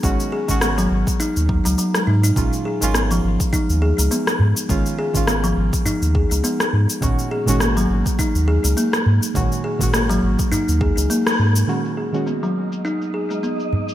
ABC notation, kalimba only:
X:1
M:4/4
L:1/16
Q:"Swing 16ths" 1/4=103
K:C#mix
V:1 name="Kalimba"
G, z G z B, F,3 D z F, F, F, G, D D | G, z G z B, E,3 D z G G, B, z3 | G, z G z B, E,3 D z G G, B, z3 | G, z G z A, F,3 D z G G, A, z3 |
G, z G z A, F,3 D z G G, A, z3 | G, z G z B, F,3 D z G G, B, z3 |]